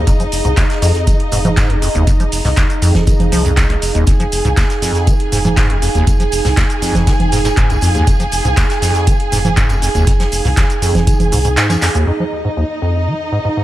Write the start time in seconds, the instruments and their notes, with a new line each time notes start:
Already playing: string section D#4 D#5, ambient pad D#4 G#4 F5
0.07 analog synth bass F1, acid bass F2, kick, closed hi-hat, tambourine, shaker
0.20 acid bass F3, closed hi-hat, shaker
0.32 analog synth bass F1, open hi-hat, tambourine, shaker
0.45 analog synth bass C2, acid bass G#2, closed hi-hat, shaker
0.57 acid bass D#2, kick, snare, clap, closed hi-hat, tambourine, shaker
0.70 snare, closed hi-hat, shaker
0.82 acid bass F2, analog synth bass F2, snare, open hi-hat, tambourine, shaker
0.95 snare, closed hi-hat, shaker
1.07 acid bass F3, kick, closed hi-hat, tambourine, shaker
1.20 closed hi-hat
1.32 analog synth bass F1, acid bass G#2, open hi-hat, tambourine, shaker
1.45 acid bass G#2, closed hi-hat, low conga, shaker
1.56 acid bass G#2, kick, snare, clap, closed hi-hat, tambourine, shaker
1.70 analog synth bass F1, acid bass F2, closed hi-hat
1.82 acid bass F2, open hi-hat, shaker
1.95 analog synth bass F1, acid bass D#2, closed hi-hat, shaker
2.07 acid bass F2, kick, closed hi-hat, tambourine, shaker
2.20 acid bass F3, closed hi-hat, shaker
2.32 analog synth bass F1, open hi-hat, tambourine, shaker
2.44 analog synth bass C2, acid bass G#2, snare, open hi-hat, shaker
2.56 acid bass D#2, kick, snare, clap, closed hi-hat, tambourine, shaker
2.70 closed hi-hat, shaker
2.82 analog synth bass F2, acid bass F2, open hi-hat, tambourine, shaker
2.95 kick, snare, closed hi-hat, low conga, shaker
3.07 acid bass F3, kick, closed hi-hat, tambourine, shaker
3.20 analog synth bass F1, closed hi-hat, low conga
3.32 analog synth bass C2, acid bass F3, open hi-hat, shaker
3.45 acid bass F2, closed hi-hat, shaker
3.57 acid bass D#2, kick, snare, clap, closed hi-hat, tambourine, shaker
3.70 acid bass F1, closed hi-hat
3.82 analog synth bass F1, open hi-hat, tambourine, shaker
3.95 analog synth bass D#1, acid bass D#2, closed hi-hat, shaker
4.07 analog synth bass F1, acid bass F2, string section G#4 G#5, kick, closed hi-hat, tambourine, shaker
4.20 acid bass F3, closed hi-hat, shaker
4.32 analog synth bass F1, open hi-hat, tambourine, shaker
4.45 analog synth bass C2, acid bass G#2, closed hi-hat, shaker
4.57 acid bass D#2, kick, snare, clap, closed hi-hat, tambourine, shaker
4.70 snare, closed hi-hat, shaker
4.82 acid bass F2, analog synth bass F2, snare, open hi-hat, tambourine, shaker
4.95 snare, closed hi-hat, shaker
5.07 acid bass F3, kick, closed hi-hat, tambourine, shaker
5.20 closed hi-hat
5.32 analog synth bass F1, acid bass G#2, open hi-hat, tambourine, shaker
5.45 acid bass G#2, closed hi-hat, low conga, shaker
5.57 acid bass G#2, kick, snare, clap, closed hi-hat, tambourine, shaker
5.70 analog synth bass F1, acid bass F2, closed hi-hat
5.82 acid bass F2, open hi-hat, tambourine, shaker
5.95 analog synth bass F1, acid bass D#2, closed hi-hat, shaker
6.07 acid bass F2, kick, closed hi-hat, tambourine, shaker
6.20 acid bass F3, closed hi-hat, shaker
6.32 analog synth bass F1, open hi-hat, tambourine, shaker
6.44 analog synth bass C2, acid bass G#2, snare, open hi-hat, shaker
6.57 acid bass D#2, kick, snare, clap, closed hi-hat, tambourine, shaker
6.70 closed hi-hat, shaker
6.82 acid bass F2, analog synth bass F2, open hi-hat, tambourine, shaker
6.95 kick, snare, closed hi-hat, low conga, shaker
7.07 acid bass F3, kick, snare, closed hi-hat, tambourine, shaker
7.20 analog synth bass F1, closed hi-hat, low conga
7.32 acid bass G#2, open hi-hat, tambourine, shaker
7.45 acid bass G#2, snare, closed hi-hat, tambourine, shaker
7.57 analog synth bass F1, acid bass G#2, kick, clap, closed hi-hat, shaker
7.70 analog synth bass C2, acid bass F2, closed hi-hat, tambourine
7.81 acid bass F2, analog synth bass F2, open hi-hat, tambourine, shaker
7.95 acid bass D#2, closed hi-hat, shaker
8.07 analog synth bass F1, acid bass F2, kick, closed hi-hat, tambourine, shaker
8.20 acid bass F3, closed hi-hat, shaker
8.32 analog synth bass F1, open hi-hat, tambourine, shaker
8.45 analog synth bass C2, acid bass G#2, closed hi-hat, shaker
8.57 acid bass D#2, kick, snare, clap, closed hi-hat, tambourine, shaker
8.70 snare, closed hi-hat, shaker
8.82 acid bass F2, analog synth bass F2, snare, open hi-hat, tambourine, shaker
8.95 snare, closed hi-hat, shaker
9.07 acid bass F3, kick, closed hi-hat, tambourine, shaker
9.20 closed hi-hat
9.32 analog synth bass F1, acid bass G#2, open hi-hat, tambourine, shaker
9.45 acid bass G#2, closed hi-hat, low conga, shaker
9.57 acid bass G#2, kick, clap, closed hi-hat, tambourine, shaker
9.69 analog synth bass F1, acid bass F2, closed hi-hat, tambourine
9.82 acid bass F2, open hi-hat, shaker
9.95 analog synth bass F1, acid bass D#2, closed hi-hat, tambourine, shaker
10.07 acid bass F2, kick, snare, closed hi-hat, tambourine, shaker
10.20 acid bass F3, snare, closed hi-hat, shaker
10.32 analog synth bass F1, open hi-hat, tambourine, shaker
10.45 analog synth bass C2, acid bass G#2, open hi-hat, shaker
10.57 acid bass D#2, kick, snare, clap, closed hi-hat, tambourine, shaker
10.70 closed hi-hat, shaker
10.82 analog synth bass F2, acid bass F2, open hi-hat, tambourine, shaker
10.95 kick, snare, closed hi-hat, low conga, shaker
11.07 acid bass F3, kick, closed hi-hat, tambourine, shaker
11.20 analog synth bass F1, closed hi-hat, low conga, shaker
11.32 analog synth bass C2, acid bass G#2, open hi-hat, shaker
11.44 acid bass G#2, closed hi-hat, shaker
11.57 acid bass G#2, snare, clap, closed hi-hat, tambourine, shaker
11.69 acid bass F2, snare, closed hi-hat, tambourine, low conga, shaker
11.82 acid bass F2, snare, clap, open hi-hat, tambourine, shaker
11.95 acid bass D#2, closed hi-hat, shaker
12.07 acid bass F2, ambient pad D#4, string section D#4 D#5
12.20 acid bass F3
12.45 acid bass G#2
12.57 acid bass D#2
12.82 acid bass F2
12.95 ambient pad G#4
13.05 acid bass F3, ambient pad F5
13.32 acid bass G#2
13.45 acid bass G#2
13.57 acid bass G#2